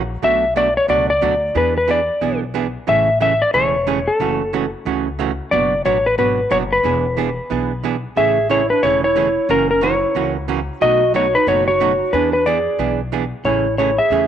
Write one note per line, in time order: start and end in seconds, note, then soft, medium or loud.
0.00 0.18 A#1 medium
0.22 0.76 B1 medium
0.22 0.44 B2 medium
0.22 0.44 F#3 medium
0.22 0.44 A3 medium
0.22 0.44 D4 medium
0.22 0.44 F#4 medium
0.22 0.57 E5 loud
0.56 0.67 B2 medium
0.56 0.67 F#3 medium
0.56 0.68 A3 medium
0.56 0.68 D4 medium
0.56 0.68 F#4 medium
0.56 0.76 D5 medium
0.77 0.89 C#5 medium
0.88 1.17 C#2 medium
0.88 1.10 B2 medium
0.88 1.10 F#3 medium
0.88 1.10 A3 medium
0.88 1.10 D4 medium
0.88 1.10 F#4 medium
0.88 1.09 D5 medium
1.10 1.57 D5 medium
1.21 1.50 D2 medium
1.21 1.33 B2 medium
1.21 1.33 F#3 medium
1.21 1.33 A3 medium
1.21 1.34 D4 medium
1.21 1.34 F#4 medium
1.55 2.08 E2 medium
1.55 1.76 E3 medium
1.55 1.76 B3 medium
1.55 1.76 D4 medium
1.55 1.76 G#4 medium
1.55 1.75 B4 medium
1.78 1.90 B4 medium
1.88 1.99 E3 medium
1.88 1.99 B3 medium
1.88 2.00 D4 medium
1.88 2.00 G#4 medium
1.88 2.39 D5 medium
2.21 2.75 B1 medium
2.21 2.42 E3 medium
2.21 2.42 B3 medium
2.21 2.43 D4 medium
2.21 2.43 G#4 medium
2.54 2.65 E3 medium
2.54 2.66 B3 medium
2.54 2.66 D4 medium
2.54 2.66 G#4 medium
2.87 3.41 A1 medium
2.87 3.08 C#3 medium
2.87 3.08 E3 medium
2.87 3.08 A3 medium
2.87 3.09 C#4 medium
2.87 3.09 G#4 medium
2.87 3.21 E5 loud
3.20 3.32 C#3 medium
3.20 3.32 E3 medium
3.20 3.32 A3 medium
3.20 3.32 C#4 medium
3.20 3.32 G#4 medium
3.20 3.42 E5 loud
3.42 3.54 D5 medium
3.54 4.07 E1 medium
3.54 3.74 C#3 medium
3.54 3.75 E3 medium
3.54 3.75 A3 medium
3.54 3.75 C#4 medium
3.54 3.75 G#4 medium
3.54 4.09 C#5 medium
3.87 3.98 C#3 medium
3.87 3.98 E3 medium
3.87 3.98 A3 medium
3.87 3.98 C#4 medium
3.87 3.99 G#4 medium
4.08 4.70 A4 medium
4.20 4.73 F#1 medium
4.20 4.41 C#3 medium
4.20 4.41 E3 medium
4.20 4.41 A3 medium
4.20 4.41 C#4 medium
4.20 4.42 F#4 medium
4.53 4.64 C#3 medium
4.53 4.64 E3 medium
4.53 4.65 A3 medium
4.53 4.65 C#4 medium
4.53 4.65 F#4 medium
4.85 5.39 C#2 medium
4.85 5.07 C#3 medium
4.85 5.07 E3 medium
4.85 5.07 A3 medium
4.85 5.07 C#4 medium
4.85 5.07 F#4 medium
5.19 5.30 C#3 medium
5.19 5.30 E3 medium
5.19 5.30 A3 medium
5.19 5.31 C#4 medium
5.19 5.31 F#4 medium
5.51 5.79 F#1 medium
5.51 5.73 B2 medium
5.51 5.73 F#3 medium
5.51 5.73 B3 medium
5.51 5.73 D4 medium
5.51 5.73 F#4 medium
5.51 5.85 D5 medium
5.85 6.13 A1 medium
5.85 5.96 B2 medium
5.85 5.97 F#3 medium
5.85 5.97 B3 medium
5.85 5.97 D4 medium
5.85 5.97 F#4 medium
5.85 6.06 C#5 medium
6.06 6.18 B4 medium
6.18 6.46 G#1 medium
6.18 6.39 B2 medium
6.18 6.39 F#3 medium
6.18 6.39 B3 medium
6.18 6.39 D4 medium
6.18 6.40 F#4 medium
6.18 6.53 B4 medium
6.50 6.79 F#1 medium
6.50 6.62 B2 medium
6.50 6.62 F#3 medium
6.50 6.63 B3 medium
6.50 6.63 D4 medium
6.50 6.63 F#4 medium
6.50 6.57 C#5 medium
6.72 8.00 B4 medium
6.84 7.37 E1 medium
6.84 7.05 E3 medium
6.84 7.05 B3 medium
6.84 7.05 D4 medium
6.84 7.06 G#4 medium
7.17 7.28 E3 medium
7.17 7.29 B3 medium
7.17 7.29 D4 medium
7.17 7.29 G#4 medium
7.50 8.03 B1 medium
7.50 7.71 E3 medium
7.50 7.71 B3 medium
7.50 7.72 D4 medium
7.50 7.72 G#4 medium
7.84 7.95 E3 medium
7.84 7.95 B3 medium
7.84 7.95 D4 medium
7.84 7.95 G#4 medium
8.17 8.69 A1 medium
8.17 8.37 C#3 medium
8.17 8.37 E3 medium
8.17 8.38 A3 medium
8.17 8.38 C#4 medium
8.17 8.48 G#4 medium
8.17 8.38 G#4 medium
8.17 8.48 E5 loud
8.49 8.61 C#3 medium
8.49 8.61 E3 medium
8.49 8.61 A3 medium
8.49 8.61 C#4 medium
8.49 8.72 E4 medium
8.49 8.61 G#4 medium
8.49 8.69 C#5 medium
8.70 8.82 D4 medium
8.70 8.83 B4 medium
8.83 9.36 E1 medium
8.83 9.04 C#3 medium
8.83 9.04 E3 medium
8.83 9.04 A3 medium
8.83 9.04 C#4 medium
8.83 9.02 E4 medium
8.83 9.04 G#4 medium
8.83 9.03 C#5 medium
9.04 9.46 E4 medium
9.04 9.51 C#5 medium
9.16 9.27 C#3 medium
9.16 9.27 E3 medium
9.16 9.27 A3 medium
9.16 9.27 C#4 medium
9.16 9.27 G#4 medium
9.49 10.02 F#1 medium
9.49 9.70 C#3 medium
9.49 9.70 E3 medium
9.49 9.70 A#3 medium
9.49 9.68 C#4 medium
9.49 9.70 C#4 medium
9.49 9.70 F#4 medium
9.49 9.69 A#4 medium
9.71 9.82 C#4 medium
9.71 9.83 A#4 medium
9.81 9.93 C#3 medium
9.81 9.93 E3 medium
9.81 9.93 A#3 medium
9.81 9.93 C#4 medium
9.81 10.32 E4 medium
9.81 9.93 F#4 medium
9.81 10.32 C#5 medium
10.15 10.68 C#2 medium
10.15 10.35 C#3 medium
10.15 10.36 E3 medium
10.15 10.36 A#3 medium
10.15 10.36 C#4 medium
10.15 10.36 F#4 medium
10.48 10.59 C#3 medium
10.48 10.59 E3 medium
10.48 10.59 A#3 medium
10.48 10.59 C#4 medium
10.48 10.60 F#4 medium
10.81 11.34 B1 medium
10.81 11.02 B2 medium
10.81 11.02 F#3 medium
10.81 11.02 A3 medium
10.81 11.02 D#4 medium
10.81 11.12 F#4 medium
10.81 11.02 F#4 medium
10.81 11.15 D#5 loud
11.14 11.25 B2 medium
11.14 11.25 F#3 medium
11.14 11.25 A3 medium
11.14 11.26 D#4 medium
11.14 11.33 F#4 medium
11.14 11.25 F#4 medium
11.14 11.36 C#5 medium
11.35 11.49 D#4 medium
11.35 11.46 B4 medium
11.47 12.00 F#1 medium
11.47 11.68 B2 medium
11.47 11.68 F#3 medium
11.47 11.68 A3 medium
11.47 11.68 D#4 medium
11.47 11.67 F#4 medium
11.47 11.68 F#4 medium
11.47 11.66 C#5 medium
11.68 12.10 F#4 medium
11.68 12.15 C#5 medium
11.80 11.91 B2 medium
11.80 11.91 F#3 medium
11.80 11.92 A3 medium
11.80 11.92 D#4 medium
11.80 11.92 F#4 medium
12.13 12.66 E2 medium
12.13 12.34 E3 medium
12.13 12.34 B3 medium
12.13 12.32 D4 medium
12.13 12.34 D4 medium
12.13 12.34 G#4 medium
12.13 12.32 B4 medium
12.33 12.48 D4 medium
12.33 12.46 B4 medium
12.46 12.57 E3 medium
12.46 12.58 B3 medium
12.46 12.58 D4 medium
12.46 13.00 G#4 medium
12.46 12.58 G#4 medium
12.46 12.99 D5 medium
12.79 13.32 B1 medium
12.79 13.00 E3 medium
12.79 13.00 B3 medium
12.79 13.00 D4 medium
12.79 13.00 G#4 medium
13.12 13.23 E3 medium
13.12 13.23 B3 medium
13.12 13.24 D4 medium
13.12 13.24 G#4 medium
13.44 13.98 A1 medium
13.44 13.66 C#3 medium
13.44 13.66 E3 medium
13.44 13.66 A3 medium
13.44 13.66 C#4 medium
13.44 13.76 E4 medium
13.44 13.66 G#4 medium
13.44 13.77 C#5 medium
13.78 13.89 C#3 medium
13.78 13.90 E3 medium
13.78 13.90 A3 medium
13.78 13.90 C#4 medium
13.78 13.97 E4 medium
13.78 13.90 G#4 medium
13.78 13.99 C#5 medium
13.98 14.27 G#4 medium
13.98 14.27 E5 medium
14.10 14.27 E2 medium
14.10 14.27 C#3 medium
14.10 14.27 E3 medium
14.10 14.27 A3 medium
14.10 14.27 C#4 medium
14.10 14.27 G#4 medium